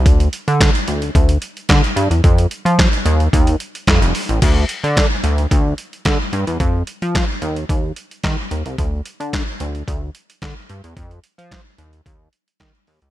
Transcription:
0.06 D2, kick, closed hi-hat
0.20 closed hi-hat
0.33 closed hi-hat
0.48 D3, closed hi-hat
0.61 kick, snare, clap, closed hi-hat
0.75 closed hi-hat
0.88 D2, closed hi-hat
1.02 closed hi-hat
1.15 D2, kick, closed hi-hat
1.29 closed hi-hat
1.42 closed hi-hat
1.57 closed hi-hat
1.69 D3, kick, snare, clap, closed hi-hat
1.84 closed hi-hat
1.96 G2, closed hi-hat
2.11 E2, closed hi-hat
2.24 F2, kick, closed hi-hat
2.38 closed hi-hat
2.51 closed hi-hat
2.65 F3, closed hi-hat
2.79 kick, snare, clap, closed hi-hat
2.93 closed hi-hat
3.05 D#2, closed hi-hat
3.20 closed hi-hat
3.33 D#2, kick, closed hi-hat
3.47 closed hi-hat
3.60 closed hi-hat
3.75 closed hi-hat
3.87 F2, kick, snare, clap, closed hi-hat
4.02 F1, closed hi-hat
4.15 open hi-hat
4.29 A1, closed hi-hat
4.42 D2, kick, closed hi-hat, crash
4.69 closed hi-hat
4.84 D3, closed hi-hat
4.97 kick, snare, clap, closed hi-hat
5.24 D2, closed hi-hat
5.38 closed hi-hat
5.51 D2, kick, closed hi-hat
5.78 closed hi-hat
5.93 closed hi-hat
6.05 D3, kick, snare, clap, closed hi-hat
6.33 G2, closed hi-hat
6.47 E2, closed hi-hat
6.60 F2, kick, closed hi-hat
6.87 closed hi-hat
7.02 F3, closed hi-hat
7.15 kick, snare, clap, closed hi-hat
7.42 D#2, closed hi-hat
7.56 closed hi-hat
7.69 D#2, kick, closed hi-hat
7.96 closed hi-hat
8.11 closed hi-hat
8.23 D#3, kick, snare, clap, closed hi-hat
8.51 D#2, closed hi-hat
8.66 C2, closed hi-hat
8.78 D2, kick, closed hi-hat
9.05 closed hi-hat
9.20 D3, closed hi-hat
9.33 kick, snare, clap, closed hi-hat
9.60 D2, closed hi-hat
9.75 closed hi-hat
9.88 D2, kick, closed hi-hat
10.15 closed hi-hat
10.30 closed hi-hat
10.42 D3, kick, snare, clap, closed hi-hat
10.69 G2, closed hi-hat
10.84 E2, closed hi-hat
10.97 F2, kick, closed hi-hat
11.11 closed hi-hat
11.24 closed hi-hat
11.38 F3, closed hi-hat
11.51 kick, snare, clap, closed hi-hat
11.78 D#2, closed hi-hat
11.93 closed hi-hat
12.06 D#2, kick, closed hi-hat
12.33 closed hi-hat
12.48 closed hi-hat
12.60 D#3, kick, snare, clap, closed hi-hat
12.75 closed hi-hat
12.87 D#2, open hi-hat
13.02 C#2, closed hi-hat

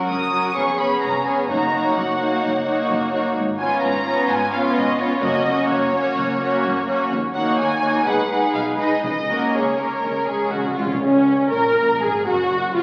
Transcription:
Already playing: F#3 C#4 F#4 A#4
0.09 F#1 F#2 D#6
0.33 F#3 C#4 F#4 A#4
0.56 F1 F2 B3 C#4 G#4 C#5 C#6
0.79 B3 C#4 G#4 C#5 B5
1.02 F1 F2 A#5
1.25 B3 C#4 G#4 C#5 G#5
1.49 F#1 F#2 A#3 D#4 F#4 C#5 A#5
1.71 A#3 D#4 F#4 C#5
1.95 F#1 F#2 F#5
2.19 A#3 D#4 F#4 C#5
2.42 F#1 F#2
2.66 A#3 D#4 F#4 C#5
2.89 F#1 F#2
3.13 A#3 D#4 F#4 C#5
3.36 G#1 G#2
3.58 B3 C#4 F4 C#5 G#5
3.82 G#1 G#2 A#5
4.05 B3 C#4 F4 C#5
4.28 G#1 G#2 G#5
4.53 B3 C#4 F4 C#5 F5
4.75 G#1 G#2 D#5
4.99 B3 C#4 F4 C#5
5.22 F#1 F#2 A#3 C#4 F#4 C#5 D#5
5.47 A#3 C#4 F#4 C#5
5.69 F#1 F#2 C#5
5.94 A#3 C#4 F#4 C#5
6.16 F#1 F#2
6.41 A#3 C#4 F#4 C#5
6.64 F#1 F#2
6.88 A#3 C#4 F#4 C#5
7.11 D#2
7.35 A#3 D#4 F#4 C#5 F#5
7.59 D#2 G#5
7.82 A#3 D#4 F#4 C#5
8.05 B1 B2 G#3 D#4 G#4 B4 F#5
8.29 G#3 D#4 G#4 B4
8.54 B1 B2 F5
8.77 G#3 D#4 G#4 B4 D#5
9.03 C#2 C#3 D#5
9.29 A#3 C#4 F#4 A#4
9.53 C#2 C#3 G#4 C#5
9.78 A#3 C#4 A#4
10.04 C#2 C#3 G#3 C#4
10.11 C#3
10.18 C#3
10.26 C#3 G#3 C#4 G#4
10.34 C#3
10.42 C#3
10.49 C#3 F#4
10.54 C#2 C#3
10.64 C#3
10.71 C#3
10.76 C#3 G#3 C#4 F4
10.86 C#3
10.94 C#3
11.02 C#2 C#4
11.51 A#1 A#2 A#4
12.01 G#1 G#2 G#4
12.25 F#1 F#2 F#4
12.75 F1 F2 F4

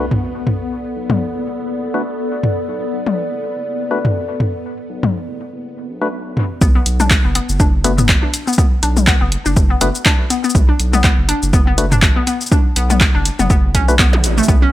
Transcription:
Already playing: F#1 B3 A4, impact
0.11 D5, mid tom
0.22 A1
0.47 mid tom
0.96 B1
1.10 mid tom, high tom
1.34 F#1
1.59 F#1
1.94 F#1 A3 D4 F#4 B4
2.43 mid tom
2.68 B1
2.93 B1
3.07 high tom
3.31 F#1
3.56 F#1
3.91 A3 D4 F#4 B4
4.05 mid tom
4.16 A1
4.40 mid tom
4.89 B1
5.03 mid tom, high tom
5.28 F#1
5.52 F#1
5.88 B1
6.02 A3 D4 F#4 B4
6.37 A1, mid tom
6.61 B1 B3, kick, shaker
6.75 B3
6.86 B1, closed hi-hat, shaker
7.00 D4, high tom, shaker
7.11 kick, clap, shaker
7.24 F#1 B3
7.35 B3, closed hi-hat
7.49 F#1, shaker
7.60 D4, kick, shaker
7.84 A3 B3 D4 F#4 B4, closed hi-hat, shaker
7.98 B3, mid tom, shaker
8.09 A1, kick, clap, shaker
8.23 D4
8.34 closed hi-hat, shaker
8.47 B3, shaker
8.53 shaker
8.58 B3, kick, shaker
8.83 B1 D4, closed hi-hat, shaker
8.97 high tom, shaker
9.07 B3, kick, clap, shaker
9.21 F#1 B3
9.32 closed hi-hat
9.46 F#1 D4, shaker
9.56 kick, shaker
9.70 B3
9.81 F#1 A3 B3 D4 F#4 B4, closed hi-hat, shaker
9.95 shaker
10.06 D4, kick, clap, shaker
10.30 B3, closed hi-hat, shaker
10.44 B3, shaker
10.50 shaker
10.55 B1, kick, shaker
10.69 D4
10.79 B1, closed hi-hat, shaker
10.93 B3, high tom, shaker
11.04 B3, kick, clap, shaker
11.18 F#1
11.29 D4, closed hi-hat
11.43 F#1, shaker
11.53 B3, kick, shaker
11.67 B3
11.78 A3 D4 F#4 B4, closed hi-hat, shaker
11.92 D4, mid tom, shaker
12.02 A1, kick, clap, shaker
12.16 B3
12.27 B3, closed hi-hat, shaker
12.41 shaker
12.46 shaker
12.52 D4, kick, shaker
12.76 B1 B3, closed hi-hat, shaker
12.90 B3, high tom, shaker
13.01 kick, clap, shaker
13.15 F#1 D4
13.25 closed hi-hat, shaker
13.39 F#1 B3, high tom, shaker
13.50 B3, kick, shaker
13.75 B1 C#4, kick, closed hi-hat, shaker
13.88 A3 D4 F#4 B4, shaker
13.99 B3, kick, clap, shaker
14.13 zap
14.24 A1, closed hi-hat, shaker
14.38 A3, shaker
14.43 shaker
14.48 B1 B3, kick, shaker
14.62 C#4

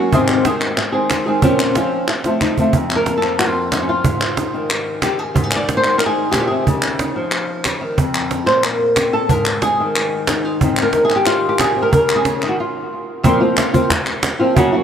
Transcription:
Already playing: F#3 A#3 C#4 F#4
0.12 G#2 C3 D#3 G#3 C4 G#4, cajon bass
0.28 clap
0.45 D#3 G#3 C4 G#4, cajon slap
0.61 clap
0.77 muted nylon-string guitar stroke, clap
0.92 D#3 G#3 C4 G#4
1.10 cajon slap, clap
1.26 D#3 G#3 C4 G#4, cajon slap
1.42 A#2 F3 C4 C#4 F4, cajon bass
1.59 clap
1.75 F3 C4 C#4 F4, cajon slap
1.92 cajon slap
2.08 muted nylon-string guitar stroke, clap
2.24 F3 A3 C4 F4, cajon slap
2.41 D#4, cajon bass, clap
2.57 F3 A3 C4 F4, cajon bass
2.73 F2, cajon bass
2.90 clap
2.96 A#4
3.06 A#3, cajon slap
3.17 A4
3.23 F3, cajon slap, clap
3.39 F#4, cajon slap, clap
3.47 F4
3.72 D#4, cajon slap, clap
3.82 C#4
3.89 F4, cajon slap
4.04 G#2, cajon bass
4.21 clap
4.37 D#4, cajon slap
4.54 D#3, cajon slap
4.70 cajon slap, clap
5.02 G4, cajon slap, clap
5.19 G#4, cajon slap
5.34 G#2 C4, cajon bass
5.44 D#4
5.51 clap
5.56 D5
5.69 cajon slap
5.77 C5
5.84 D#3, cajon slap, clap
5.98 A#4, clap
6.06 G#4
6.31 A#2 G4, cajon slap, clap
6.40 F4
6.47 C3 G#4, cajon slap
6.67 C#3 D#4, cajon bass
6.82 clap
6.99 D#4, cajon slap
7.16 F3
7.31 clap
7.64 C#3, cajon slap, clap
7.81 D#3
7.98 F2, cajon bass
8.14 clap
8.31 cajon slap
8.46 A#2 C5, cajon slap, clap
8.63 A#4, cajon slap, clap
8.96 C4, cajon slap, clap
9.13 A4, cajon slap
9.29 G#2 A#4, cajon bass
9.45 clap
9.62 G#4, cajon slap
9.80 D#3
9.95 cajon slap, clap
10.28 D#4, cajon slap, clap
10.44 F4, cajon slap
10.61 G#2 D#3 C4 D#4, cajon bass
10.77 clap
10.83 A#4
10.93 D#4, cajon slap
11.05 G#4
11.10 D#3, clap
11.16 G4
11.26 F4, clap
11.49 G4
11.59 A#2 G#4, cajon slap, clap
11.76 C3, cajon slap
11.82 A#4
11.91 C#3 A#4, cajon bass
12.09 clap
12.16 G#4
12.25 C#3, cajon slap
12.42 D#3, cajon slap, clap
12.49 F#4
12.60 F4
13.23 F2 A#2 F3 A#3 C4 F4, cajon bass
13.40 F3 A#3 C4 F4, cajon slap
13.57 F3 A#3 C4 F4, cajon slap, clap
13.73 F3 A#3 C4 F4, cajon bass
13.90 muted nylon-string guitar stroke, cajon bass, cajon slap, clap
14.06 clap
14.23 cajon slap, clap
14.39 F3 A#3 C4 F4, cajon slap
14.56 F#2 C#3 F#3 A#3 C#4 F#4, cajon bass
14.72 F#3 A#3 C#4 F#4

